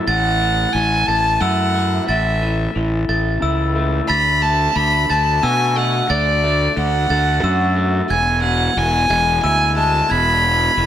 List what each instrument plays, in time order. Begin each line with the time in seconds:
Already playing: clean electric guitar E3 A3 E4
0.07 fingered electric bass A1, clean electric guitar A2, violin F#5, glockenspiel A6
0.41 clean electric guitar E3
0.73 fingered electric bass A1, clean electric guitar E3, violin G#5
1.06 fingered electric bass A1, clean electric guitar A3, violin A5, glockenspiel A6
1.40 fingered electric bass F#2, clean electric guitar E4, violin F#5, glockenspiel E6
1.75 clean electric guitar A3
2.08 fingered electric bass A1, clean electric guitar A2, violin E5, glockenspiel A6
2.42 clean electric guitar E3
2.75 fingered electric bass A1, clean electric guitar E3
3.09 fingered electric bass A1, clean electric guitar A3, glockenspiel A6
3.42 fingered electric bass C#2, clean electric guitar E4, glockenspiel E6
3.76 clean electric guitar A3
4.09 fingered electric bass D2, clean electric guitar D3, violin B5, glockenspiel A6
4.42 clean electric guitar A3, violin A5
4.75 fingered electric bass D2, clean electric guitar D3, violin B5
5.09 fingered electric bass D2, clean electric guitar A3, violin A5, glockenspiel A6
5.42 fingered electric bass B2, clean electric guitar F#4, violin G#5, glockenspiel E6
5.76 clean electric guitar A3, violin F#5
6.10 fingered electric bass D2, clean electric guitar D3, violin D5, glockenspiel A6
6.44 clean electric guitar A3
6.77 fingered electric bass D2, clean electric guitar D3, violin F#5
7.10 fingered electric bass D2, clean electric guitar A3, glockenspiel A6
7.43 fingered electric bass F#2, clean electric guitar F#4, glockenspiel E6
7.77 clean electric guitar A3
8.10 fingered electric bass E1, clean electric guitar E2, violin G#5, glockenspiel G#6
8.43 clean electric guitar B2, violin F#5
8.77 fingered electric bass E1, clean electric guitar E3, violin G#5
9.09 fingered electric bass E1, clean electric guitar G#3, glockenspiel G#6
9.43 fingered electric bass D2, clean electric guitar E4, violin G#5, glockenspiel E6
9.76 clean electric guitar G#3, violin A5
10.10 fingered electric bass E1, clean electric guitar E2, violin B5, glockenspiel G#6
10.43 clean electric guitar B2
10.77 fingered electric bass E1, clean electric guitar E3